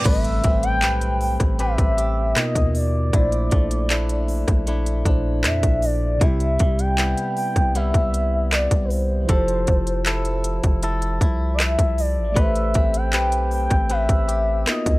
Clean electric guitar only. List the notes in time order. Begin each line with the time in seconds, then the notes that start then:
Already playing: B3 D4
0.05 A3 B4
0.44 C4
0.82 C4 G4 B4
1.59 C4 G4 B4
1.98 G4
2.36 B2
3.13 A#2 E4
3.51 A3
3.90 A3 D4 E4
4.67 A3 D4 E4
5.06 D4
6.21 C3 E4
6.60 G3
6.98 G3 B3 E4
7.75 G3 B3 E4
9.29 F3 A4
10.06 E4 A4
10.83 E4 A4
11.21 E4
12.36 A3 B4
12.75 C4
13.13 C4 G4 B4
13.90 C4 G4 B4
14.28 G4
14.67 B2